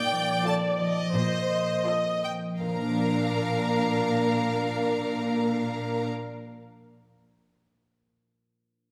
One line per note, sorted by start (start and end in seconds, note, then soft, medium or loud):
0.00 0.31 A#2 medium
0.00 1.13 A#2 medium
0.00 2.64 D#4 soft
0.00 1.14 D5 medium
0.00 0.44 G5 medium
0.12 0.79 F3 soft
0.45 1.84 C4 soft
0.45 0.97 F4 soft
0.45 0.97 A4 soft
0.45 0.54 A5 medium
0.80 2.22 F3 soft
0.80 2.21 D#5 medium
1.14 1.71 A#2 soft
1.14 2.60 A#2 soft
1.14 1.84 C5 soft
1.50 2.73 A#3 soft
1.86 2.64 C4 soft
1.86 2.42 F4 soft
1.86 2.42 A4 soft
1.86 2.23 D#5 soft
2.23 2.66 F3 soft
2.23 2.32 G5 soft
2.60 6.51 A#2 soft
2.60 6.08 A#2 soft
2.60 6.08 D4 soft
2.60 6.08 A#4 soft
2.60 6.08 F5 soft
2.60 6.08 A#5 soft
2.68 6.50 F3 soft
2.75 6.22 A#3 soft
2.82 6.29 D4 soft
2.89 6.36 A#4 soft
2.96 6.43 D5 soft